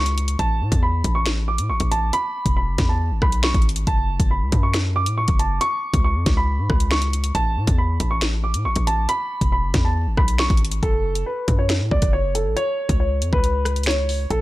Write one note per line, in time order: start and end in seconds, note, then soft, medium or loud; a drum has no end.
0.00 0.37 C#2 loud
0.00 0.37 C#6 medium
0.00 downlifter medium
0.06 closed hi-hat medium
0.18 closed hi-hat medium
0.28 closed hi-hat medium
0.39 0.62 A1 loud
0.39 0.80 A5 loud
0.39 kick loud
0.39 closed hi-hat medium
0.61 0.71 A2 loud
0.72 1.03 E2 loud
0.72 kick loud
0.72 closed hi-hat medium
0.83 1.13 B5 medium
1.04 1.60 A1 loud
1.04 kick medium
1.04 closed hi-hat medium
1.15 1.25 C#6 medium
1.26 finger snap medium
1.26 snare loud
1.26 closed hi-hat medium
1.48 1.68 D6 medium
1.58 1.71 A2 loud
1.58 closed hi-hat medium
1.70 1.80 A1 loud
1.70 1.90 C#6 medium
1.80 2.12 A1 loud
1.80 kick loud
1.80 closed hi-hat medium
1.91 2.12 A5 medium
1.91 closed hi-hat medium
2.13 2.54 B5 loud
2.13 closed hi-hat medium
2.46 2.69 E1 loud
2.46 kick medium
2.46 closed hi-hat medium
2.57 2.87 B5 medium
2.67 2.78 F#1 loud
2.78 3.12 E2 loud
2.78 kick medium
2.78 snare medium
2.78 closed hi-hat medium
2.89 3.20 A5 medium
3.11 3.21 G#1 loud
3.22 3.53 B1 loud
3.22 3.42 B5 medium
3.22 kick loud
3.22 cross-stick loud
3.32 closed hi-hat medium
3.43 3.64 C#6 medium
3.43 finger snap loud
3.43 snare loud
3.54 3.86 G#1 loud
3.54 kick loud
3.54 closed hi-hat soft
3.62 closed hi-hat medium
3.69 closed hi-hat medium
3.76 closed hi-hat medium
3.87 4.18 F#1 loud
3.87 4.28 A5 loud
3.87 kick loud
3.87 closed hi-hat medium
4.20 4.43 F#1 loud
4.20 kick loud
4.20 closed hi-hat medium
4.31 4.61 B5 medium
4.41 4.52 C#2 loud
4.52 5.08 F#2 loud
4.52 kick medium
4.52 closed hi-hat medium
4.63 4.73 C#6 medium
4.74 finger snap loud
4.74 snare loud
4.74 closed hi-hat medium
4.96 5.16 D6 medium
5.06 5.27 A2 medium
5.06 closed hi-hat medium
5.18 5.38 C#6 medium
5.28 5.60 F#1 loud
5.28 kick loud
5.28 closed hi-hat medium
5.39 5.60 A5 medium
5.39 closed hi-hat medium
5.61 6.02 C#6 loud
5.61 closed hi-hat medium
5.94 6.17 C#2 loud
5.94 kick medium
5.94 closed hi-hat medium
6.04 6.35 C#6 medium
6.15 6.26 F2 loud
6.26 6.60 C#2 loud
6.26 kick medium
6.26 snare medium
6.26 closed hi-hat medium
6.37 6.88 B5 medium
6.59 6.69 G#2 loud
6.70 7.32 C#2 loud
6.70 kick loud
6.70 cross-stick loud
6.80 closed hi-hat medium
6.91 7.32 C#6 medium
6.91 finger snap loud
6.91 snare loud
7.02 closed hi-hat medium
7.13 closed hi-hat medium
7.24 closed hi-hat medium
7.35 7.58 A1 loud
7.35 7.76 A5 loud
7.35 kick loud
7.35 closed hi-hat medium
7.57 7.67 A2 loud
7.67 7.99 E2 loud
7.67 kick medium
7.67 closed hi-hat medium
7.78 8.09 B5 medium
8.00 8.56 A1 loud
8.00 kick medium
8.00 closed hi-hat medium
8.11 8.21 C#6 medium
8.21 finger snap loud
8.21 snare loud
8.21 closed hi-hat medium
8.44 8.64 D6 medium
8.54 8.67 A2 medium
8.54 closed hi-hat loud
8.65 8.76 A1 medium
8.65 8.86 C#6 medium
8.76 9.07 A1 loud
8.76 kick loud
8.76 closed hi-hat medium
8.87 9.08 A5 medium
8.87 closed hi-hat medium
9.09 9.50 B5 loud
9.09 closed hi-hat medium
9.41 9.65 E1 loud
9.41 kick loud
9.41 closed hi-hat medium
9.52 9.83 B5 medium
9.63 9.73 F#1 loud
9.74 10.08 E2 loud
9.74 kick medium
9.74 snare medium
9.74 closed hi-hat medium
9.85 10.15 A5 medium
10.07 10.17 G#1 loud
10.17 10.49 B1 loud
10.17 10.38 B5 medium
10.17 kick loud
10.17 cross-stick loud
10.28 closed hi-hat medium
10.38 10.60 C#6 medium
10.38 finger snap loud
10.38 snare loud
10.50 10.81 G#1 loud
10.50 kick loud
10.50 closed hi-hat soft
10.57 closed hi-hat medium
10.65 closed hi-hat medium
10.71 closed hi-hat medium
10.83 11.24 F#1 loud
10.83 11.24 A4 loud
10.83 kick loud
10.83 closed hi-hat medium
11.15 closed hi-hat medium
11.26 11.57 B4 medium
11.48 11.82 F#2 loud
11.48 kick medium
11.48 closed hi-hat medium
11.59 11.69 C#5 medium
11.69 finger snap medium
11.69 snare loud
11.69 closed hi-hat medium
11.81 11.91 A2 loud
11.91 12.02 C#2 loud
11.91 12.12 D5 medium
11.91 kick loud
12.02 12.47 F#1 loud
12.02 kick loud
12.02 cross-stick medium
12.02 closed hi-hat medium
12.13 12.34 C#5 medium
12.35 12.55 A4 medium
12.35 closed hi-hat medium
12.46 12.56 A1 loud
12.57 12.97 C#5 loud
12.57 closed hi-hat medium
12.89 13.23 C#2 loud
12.89 kick medium
12.89 closed hi-hat medium
13.00 13.31 C#5 medium
13.22 13.32 F2 loud
13.22 closed hi-hat medium
13.33 14.27 C#2 loud
13.33 13.84 B4 medium
13.33 kick loud
13.44 closed hi-hat medium
13.65 cross-stick loud
13.65 closed hi-hat medium
13.76 closed hi-hat medium
13.83 14.28 C#5 medium
13.83 finger snap loud
13.83 snare loud
13.83 closed hi-hat medium
13.91 closed hi-hat medium
14.09 open hi-hat medium
14.31 14.41 A1 loud
14.31 14.41 A4 loud
14.31 kick loud
14.31 closed hi-hat medium